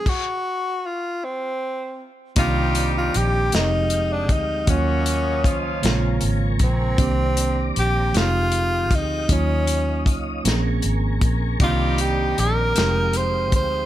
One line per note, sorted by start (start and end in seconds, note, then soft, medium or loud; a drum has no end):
0.00 0.10 G#4 medium
0.06 0.87 F#4 loud
0.06 kick loud
0.06 crash medium
0.86 1.26 F4 medium
1.24 2.09 C4 medium
2.35 3.10 C2 loud
2.35 2.43 D3 medium
2.35 3.48 G3 loud
2.35 3.52 A#3 medium
2.35 3.52 C4 medium
2.35 3.53 D4 medium
2.35 3.48 D#4 loud
2.35 2.92 F4 loud
2.35 3.48 G4 loud
2.35 3.51 C5 medium
2.35 3.51 D5 medium
2.35 3.51 A#5 medium
2.35 3.51 D6 medium
2.35 kick loud
2.35 closed hi-hat medium
2.40 3.55 D#3 medium
2.40 3.54 G4 medium
2.75 closed hi-hat medium
2.98 3.18 F4 medium
3.14 3.49 A#1 medium
3.14 3.56 G4 loud
3.14 closed hi-hat soft
3.51 4.30 F1 medium
3.51 4.66 F3 medium
3.51 3.59 G3 soft
3.51 4.67 G#3 medium
3.51 4.68 C4 medium
3.51 4.69 D#4 medium
3.51 4.14 D#4 loud
3.51 5.81 F5 medium
3.51 4.67 G5 medium
3.51 4.66 D#6 medium
3.51 snare loud
3.51 closed hi-hat medium
3.56 4.71 G#3 medium
3.56 4.69 G4 medium
3.90 closed hi-hat soft
4.12 4.34 D4 medium
4.29 4.64 D2 medium
4.29 4.71 D#4 medium
4.29 kick medium
4.29 closed hi-hat soft
4.66 5.46 D#2 medium
4.66 5.82 D#3 medium
4.66 4.74 F3 medium
4.66 5.40 A#3 medium
4.66 5.83 A#3 medium
4.66 5.40 C#4 medium
4.66 5.84 C#4 medium
4.66 5.40 F#4 loud
4.66 5.82 C#5 medium
4.66 5.82 D#5 medium
4.66 5.82 D#6 medium
4.66 kick loud
4.66 closed hi-hat medium
4.71 5.86 F#3 medium
4.71 5.84 F4 medium
5.06 closed hi-hat medium
5.44 5.80 C#2 medium
5.44 6.56 F3 medium
5.44 6.56 C#4 medium
5.44 6.56 F4 medium
5.44 kick medium
5.44 closed hi-hat soft
5.82 6.18 A#1 loud
5.82 5.89 C3 medium
5.82 6.98 G#3 medium
5.82 6.97 A#3 medium
5.82 6.98 C4 medium
5.82 6.97 A#4 medium
5.82 6.97 G#5 medium
5.82 8.12 A#5 medium
5.82 6.98 C#6 medium
5.82 snare loud
5.82 closed hi-hat medium
5.86 7.01 C#3 medium
5.86 7.00 F4 medium
6.21 6.57 G#1 medium
6.21 closed hi-hat soft
6.59 6.95 A#1 medium
6.59 7.73 C4 loud
6.59 kick medium
6.59 closed hi-hat soft
6.97 7.72 C2 loud
6.97 8.13 D#3 medium
6.97 8.14 A#3 medium
6.97 8.14 C4 medium
6.97 8.15 D4 medium
6.97 8.15 G4 medium
6.97 8.13 C5 medium
6.97 8.13 D5 medium
6.97 8.13 D6 medium
6.97 kick loud
6.97 closed hi-hat medium
7.37 closed hi-hat medium
7.76 8.11 A#1 medium
7.76 8.19 G4 loud
7.76 closed hi-hat soft
8.13 8.92 F1 loud
8.13 9.28 F3 medium
8.13 9.29 G#3 medium
8.13 9.28 G#3 medium
8.13 9.30 C4 medium
8.13 9.30 D#4 medium
8.13 10.42 F5 medium
8.13 9.28 G5 medium
8.13 9.28 D#6 medium
8.13 closed hi-hat medium
8.17 8.96 F4 loud
8.17 9.31 G4 medium
8.17 snare loud
8.52 closed hi-hat soft
8.91 9.26 D2 medium
8.91 kick medium
8.91 closed hi-hat soft
8.95 9.34 D#4 medium
9.28 10.07 D#2 loud
9.28 10.44 F#3 medium
9.28 10.44 A#3 medium
9.28 10.45 C#4 medium
9.28 10.46 D#4 medium
9.28 10.44 C#5 medium
9.28 10.44 D#5 medium
9.28 kick loud
9.28 closed hi-hat medium
9.32 10.17 C#4 loud
9.32 10.46 F4 medium
9.67 closed hi-hat medium
10.06 10.41 C#2 medium
10.06 kick medium
10.06 closed hi-hat soft
10.44 10.79 A#1 loud
10.44 11.60 F3 medium
10.44 11.59 A#3 medium
10.44 11.60 C4 medium
10.44 11.61 C#4 medium
10.44 11.62 G#4 medium
10.44 11.59 A#4 medium
10.44 11.59 G#5 medium
10.44 12.73 A#5 medium
10.44 11.59 C#6 medium
10.44 snare loud
10.44 closed hi-hat medium
10.82 11.18 G#1 medium
10.82 closed hi-hat soft
11.21 11.57 A#1 medium
11.21 kick loud
11.21 closed hi-hat soft
11.59 12.33 C2 medium
11.59 11.66 D3 medium
11.59 12.71 G3 medium
11.59 12.75 A#3 medium
11.59 12.76 C4 medium
11.59 12.76 D4 medium
11.59 12.71 D#4 loud
11.59 12.03 F4 loud
11.59 12.71 G4 loud
11.59 12.74 C5 medium
11.59 12.74 D5 medium
11.59 12.74 D6 medium
11.59 kick loud
11.59 closed hi-hat medium
11.63 12.78 D#3 medium
11.63 12.77 G4 medium
11.98 12.41 G4 loud
11.98 closed hi-hat medium
12.38 12.72 A#1 medium
12.38 13.18 A#4 loud
12.38 closed hi-hat soft
12.75 13.53 F1 medium
12.75 13.86 F3 medium
12.75 12.82 G3 soft
12.75 13.86 G#3 medium
12.75 13.86 C4 medium
12.75 13.86 D#4 medium
12.75 13.86 G4 medium
12.75 13.86 F5 medium
12.75 13.86 G5 medium
12.75 13.86 D#6 medium
12.75 snare loud
12.75 closed hi-hat medium
12.82 13.86 G#3 medium
13.13 13.54 C5 loud
13.13 closed hi-hat soft
13.52 13.86 D2 medium
13.52 13.86 C5 loud
13.52 kick medium
13.52 closed hi-hat soft